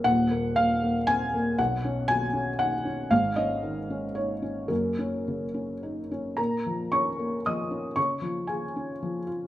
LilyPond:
<<
  \new Staff \with { instrumentName = "Felt piano" } { \time 3/4 \key bes \minor \tempo 4 = 115 ges''4 f''4 aes''4 | fis''4 aes''4 fis''4 | f''8 ees''4. des''4 | bes'2~ bes'8 r8 |
<bes' bes''>4 <des'' des'''>4 <ees'' ees'''>4 | <des'' des'''>4 <aes' aes''>4. r8 | }
  \new Staff \with { instrumentName = "Felt piano" } { \time 3/4 \key bes \minor <ees,, ees,>8 bes8 bes,8 bes8 c'8 bes8 | <b,, b,>8 cis'8 fis8 cis'8 dis'8 cis'8 | <aes,, aes,>8 des'8 ees8 des'8 ees'8 des'8 | <ges,, ges,>8 des'8 des8 des'8 ees'8 des'8 |
bes,8 f8 des'8 bes8 f8 des'8 | des8 f8 f'8 des'8 f8 f'8 | }
>>